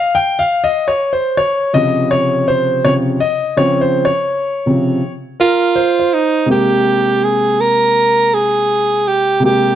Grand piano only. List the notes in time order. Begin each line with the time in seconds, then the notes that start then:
Already playing: F5
0.15 G5
0.39 F5
0.64 D#5
0.88 C#5
1.13 C5
1.37 C#5
1.73 C3 C#3 F3 D#5
2.11 C#5
2.48 C5
2.84 C3 C#3 F3 C#5
3.20 D#5
3.57 C#3 F3 C4 C#5
3.81 C5
4.05 C#5
4.66 C3 C#3 F3
5.40 A#4
5.76 C5
5.99 C5
6.46 C3 G#3 A#3
6.51 G5
9.40 C3 G#3 A#3
9.45 G4